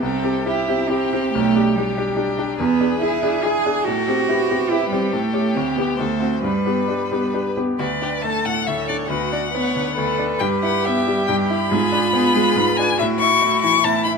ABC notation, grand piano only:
X:1
M:3/4
L:1/8
Q:1/4=140
K:G
V:1 name="Grand piano"
C,, [CG] [EG] [CG] [EG] [CG] | B,,, [DG] [DG] [DG] [DG] [DG] | E,, [D^G] [EG] [DG] [EG] [DG] | A,, [CG] [EG] [CG] [EG] [CG] |
A,, [^CG] D,, [B,G] D,, [=CF] | G,, [B,G] [DG] [B,G] [DG] [B,G] | [K:D] D,, D A, A,, D,, D | D,, D B, D, D,, D |
G,, E B, G, G,, E | ^G,, D B, ^G, G,, D | A,, E A, E, A,, E |]